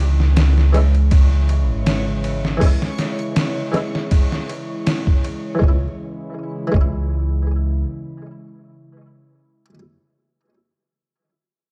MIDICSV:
0, 0, Header, 1, 6, 480
1, 0, Start_track
1, 0, Key_signature, 4, "minor"
1, 0, Tempo, 750000
1, 1676, Time_signature, 4, 2, 24, 8
1, 7496, End_track
2, 0, Start_track
2, 0, Title_t, "Synth texture"
2, 0, Program_c, 0, 99
2, 0, Note_on_c, 0, 73, 82
2, 3609, Note_off_c, 0, 73, 0
2, 7496, End_track
3, 0, Start_track
3, 0, Title_t, "Harpsichord"
3, 0, Program_c, 1, 6
3, 0, Note_on_c, 1, 52, 80
3, 0, Note_on_c, 1, 56, 69
3, 0, Note_on_c, 1, 61, 70
3, 0, Note_on_c, 1, 64, 87
3, 436, Note_off_c, 1, 52, 0
3, 446, Note_off_c, 1, 56, 0
3, 455, Note_off_c, 1, 61, 0
3, 465, Note_off_c, 1, 64, 0
3, 465, Note_on_c, 1, 52, 84
3, 473, Note_on_c, 1, 56, 76
3, 483, Note_on_c, 1, 61, 80
3, 493, Note_on_c, 1, 64, 96
3, 560, Note_off_c, 1, 52, 0
3, 564, Note_off_c, 1, 56, 0
3, 569, Note_off_c, 1, 61, 0
3, 574, Note_off_c, 1, 64, 0
3, 1646, Note_on_c, 1, 52, 73
3, 1666, Note_on_c, 1, 56, 68
3, 1684, Note_on_c, 1, 61, 70
3, 1703, Note_on_c, 1, 64, 82
3, 2355, Note_off_c, 1, 52, 0
3, 2364, Note_off_c, 1, 56, 0
3, 2374, Note_off_c, 1, 61, 0
3, 2380, Note_on_c, 1, 52, 85
3, 2383, Note_off_c, 1, 64, 0
3, 2389, Note_on_c, 1, 56, 76
3, 2398, Note_on_c, 1, 61, 78
3, 2408, Note_on_c, 1, 64, 93
3, 2478, Note_off_c, 1, 52, 0
3, 2482, Note_off_c, 1, 56, 0
3, 2487, Note_off_c, 1, 61, 0
3, 2492, Note_off_c, 1, 64, 0
3, 3552, Note_on_c, 1, 52, 71
3, 3578, Note_on_c, 1, 56, 62
3, 3608, Note_on_c, 1, 61, 62
3, 3637, Note_on_c, 1, 64, 74
3, 3714, Note_off_c, 1, 52, 0
3, 3728, Note_off_c, 1, 56, 0
3, 3744, Note_off_c, 1, 61, 0
3, 3759, Note_off_c, 1, 64, 0
3, 4271, Note_on_c, 1, 52, 70
3, 4300, Note_on_c, 1, 56, 72
3, 4328, Note_on_c, 1, 61, 69
3, 4358, Note_on_c, 1, 64, 77
3, 6177, Note_off_c, 1, 52, 0
3, 6206, Note_off_c, 1, 56, 0
3, 6234, Note_off_c, 1, 61, 0
3, 6264, Note_off_c, 1, 64, 0
3, 7496, End_track
4, 0, Start_track
4, 0, Title_t, "Ambient pad"
4, 0, Program_c, 2, 92
4, 0, Note_on_c, 2, 49, 87
4, 0, Note_on_c, 2, 52, 78
4, 0, Note_on_c, 2, 56, 78
4, 0, Note_on_c, 2, 64, 92
4, 3573, Note_off_c, 2, 56, 0
4, 3574, Note_off_c, 2, 49, 0
4, 3574, Note_off_c, 2, 52, 0
4, 3574, Note_off_c, 2, 64, 0
4, 3589, Note_on_c, 2, 56, 74
4, 3591, Note_on_c, 2, 49, 81
4, 3592, Note_on_c, 2, 52, 73
4, 3592, Note_on_c, 2, 64, 93
4, 5495, Note_off_c, 2, 56, 0
4, 5497, Note_off_c, 2, 49, 0
4, 5497, Note_off_c, 2, 64, 0
4, 5498, Note_off_c, 2, 52, 0
4, 7496, End_track
5, 0, Start_track
5, 0, Title_t, "Upright bass"
5, 0, Program_c, 3, 32
5, 0, Note_on_c, 3, 37, 88
5, 1086, Note_off_c, 3, 37, 0
5, 1086, Note_on_c, 3, 32, 85
5, 1655, Note_off_c, 3, 32, 0
5, 3595, Note_on_c, 3, 37, 80
5, 3737, Note_off_c, 3, 37, 0
5, 4315, Note_on_c, 3, 37, 82
5, 5010, Note_off_c, 3, 37, 0
5, 7496, End_track
6, 0, Start_track
6, 0, Title_t, "Drums"
6, 0, Note_on_c, 9, 51, 70
6, 61, Note_off_c, 9, 51, 0
6, 128, Note_on_c, 9, 38, 34
6, 192, Note_off_c, 9, 38, 0
6, 234, Note_on_c, 9, 51, 91
6, 237, Note_on_c, 9, 38, 115
6, 298, Note_off_c, 9, 51, 0
6, 301, Note_off_c, 9, 38, 0
6, 370, Note_on_c, 9, 38, 45
6, 434, Note_off_c, 9, 38, 0
6, 476, Note_on_c, 9, 51, 62
6, 540, Note_off_c, 9, 51, 0
6, 605, Note_on_c, 9, 51, 39
6, 669, Note_off_c, 9, 51, 0
6, 712, Note_on_c, 9, 51, 84
6, 715, Note_on_c, 9, 36, 104
6, 776, Note_off_c, 9, 51, 0
6, 779, Note_off_c, 9, 36, 0
6, 954, Note_on_c, 9, 51, 60
6, 1018, Note_off_c, 9, 51, 0
6, 1193, Note_on_c, 9, 51, 73
6, 1196, Note_on_c, 9, 38, 98
6, 1257, Note_off_c, 9, 51, 0
6, 1260, Note_off_c, 9, 38, 0
6, 1434, Note_on_c, 9, 51, 67
6, 1498, Note_off_c, 9, 51, 0
6, 1566, Note_on_c, 9, 38, 53
6, 1630, Note_off_c, 9, 38, 0
6, 1672, Note_on_c, 9, 46, 69
6, 1674, Note_on_c, 9, 36, 93
6, 1736, Note_off_c, 9, 46, 0
6, 1738, Note_off_c, 9, 36, 0
6, 1805, Note_on_c, 9, 38, 47
6, 1869, Note_off_c, 9, 38, 0
6, 1910, Note_on_c, 9, 51, 61
6, 1913, Note_on_c, 9, 38, 55
6, 1974, Note_off_c, 9, 51, 0
6, 1977, Note_off_c, 9, 38, 0
6, 2041, Note_on_c, 9, 51, 40
6, 2105, Note_off_c, 9, 51, 0
6, 2151, Note_on_c, 9, 51, 83
6, 2153, Note_on_c, 9, 38, 113
6, 2215, Note_off_c, 9, 51, 0
6, 2217, Note_off_c, 9, 38, 0
6, 2393, Note_on_c, 9, 51, 59
6, 2396, Note_on_c, 9, 38, 43
6, 2457, Note_off_c, 9, 51, 0
6, 2460, Note_off_c, 9, 38, 0
6, 2528, Note_on_c, 9, 38, 50
6, 2592, Note_off_c, 9, 38, 0
6, 2631, Note_on_c, 9, 51, 83
6, 2634, Note_on_c, 9, 36, 98
6, 2695, Note_off_c, 9, 51, 0
6, 2698, Note_off_c, 9, 36, 0
6, 2767, Note_on_c, 9, 38, 49
6, 2831, Note_off_c, 9, 38, 0
6, 2876, Note_on_c, 9, 51, 63
6, 2940, Note_off_c, 9, 51, 0
6, 3114, Note_on_c, 9, 51, 78
6, 3117, Note_on_c, 9, 38, 97
6, 3178, Note_off_c, 9, 51, 0
6, 3181, Note_off_c, 9, 38, 0
6, 3245, Note_on_c, 9, 36, 86
6, 3309, Note_off_c, 9, 36, 0
6, 3356, Note_on_c, 9, 51, 60
6, 3420, Note_off_c, 9, 51, 0
6, 3594, Note_on_c, 9, 36, 91
6, 3658, Note_off_c, 9, 36, 0
6, 4315, Note_on_c, 9, 36, 93
6, 4379, Note_off_c, 9, 36, 0
6, 7496, End_track
0, 0, End_of_file